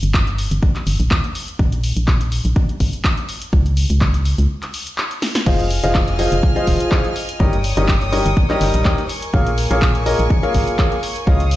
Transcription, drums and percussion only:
0.03 closed hi-hat
0.14 kick, clap
0.27 closed hi-hat
0.38 open hi-hat
0.51 closed hi-hat
0.63 kick
0.76 clap, closed hi-hat
0.87 open hi-hat
1.00 closed hi-hat
1.11 kick, clap
1.24 closed hi-hat
1.35 open hi-hat
1.48 closed hi-hat
1.59 kick
1.72 closed hi-hat
1.84 open hi-hat
1.97 closed hi-hat
2.08 kick, clap
2.21 closed hi-hat
2.32 open hi-hat
2.45 closed hi-hat
2.56 kick
2.69 closed hi-hat
2.80 kick, open hi-hat
2.93 closed hi-hat
3.04 kick, clap
3.17 closed hi-hat
3.29 open hi-hat
3.42 closed hi-hat
3.53 kick
3.66 closed hi-hat
3.77 open hi-hat
3.90 closed hi-hat
4.01 kick, clap
4.14 closed hi-hat
4.25 open hi-hat
4.38 closed hi-hat
4.63 clap, closed hi-hat
4.74 open hi-hat
4.87 closed hi-hat
4.98 clap
5.11 closed hi-hat
5.22 snare, open hi-hat
5.35 snare, closed hi-hat
5.46 kick, crash
5.59 closed hi-hat
5.71 open hi-hat
5.84 closed hi-hat
5.95 kick, clap
6.08 closed hi-hat
6.19 open hi-hat
6.32 closed hi-hat
6.43 kick
6.56 closed hi-hat
6.67 kick, open hi-hat
6.80 closed hi-hat
6.92 kick, clap
7.05 closed hi-hat
7.16 open hi-hat
7.29 closed hi-hat
7.40 kick
7.53 closed hi-hat
7.64 open hi-hat
7.77 closed hi-hat
7.88 kick, clap
8.01 closed hi-hat
8.13 open hi-hat
8.26 closed hi-hat
8.37 kick
8.50 clap, closed hi-hat
8.61 open hi-hat
8.74 closed hi-hat
8.85 kick, clap
8.98 closed hi-hat
9.09 open hi-hat
9.22 closed hi-hat
9.34 kick
9.47 closed hi-hat
9.58 open hi-hat
9.71 closed hi-hat
9.82 kick, clap
9.95 closed hi-hat
10.06 open hi-hat
10.19 closed hi-hat
10.30 kick
10.43 closed hi-hat
10.54 kick, open hi-hat
10.68 closed hi-hat
10.79 kick, clap
10.92 closed hi-hat
11.03 open hi-hat
11.16 closed hi-hat
11.27 kick
11.40 closed hi-hat
11.51 open hi-hat

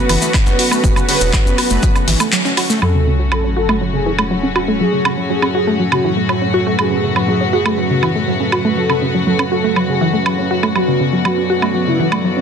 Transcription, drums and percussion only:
0.09 open hi-hat, tambourine, low woodblock
0.22 maracas
0.34 kick, snare, clap, tambourine, low woodblock, maracas
0.46 snare, maracas
0.59 open hi-hat, tambourine
0.71 low woodblock, maracas
0.84 kick, tambourine, maracas
0.96 low woodblock, maracas
1.09 snare, open hi-hat, tambourine
1.21 maracas
1.33 kick, snare, clap, tambourine, low woodblock, maracas
1.47 maracas
1.58 open hi-hat, tambourine, low woodblock
1.70 maracas
1.83 kick, tambourine, maracas
1.95 low woodblock, maracas
2.08 snare, open hi-hat, tambourine
2.20 snare, low woodblock, maracas
2.32 snare, clap, tambourine, maracas
2.45 snare, maracas
2.57 snare, open hi-hat, tambourine, low woodblock
2.70 snare, maracas
2.82 low woodblock
3.32 low woodblock
3.69 low woodblock
4.19 low woodblock
4.56 low woodblock
5.05 low woodblock
5.42 low woodblock
5.92 low woodblock
6.29 low woodblock
6.79 low woodblock
7.16 low woodblock
7.66 low woodblock
8.03 low woodblock
8.52 low woodblock
8.90 low woodblock
9.39 low woodblock
9.76 low woodblock
10.26 low woodblock
10.63 low woodblock
10.76 low woodblock
11.25 low woodblock
11.62 low woodblock
12.12 low woodblock

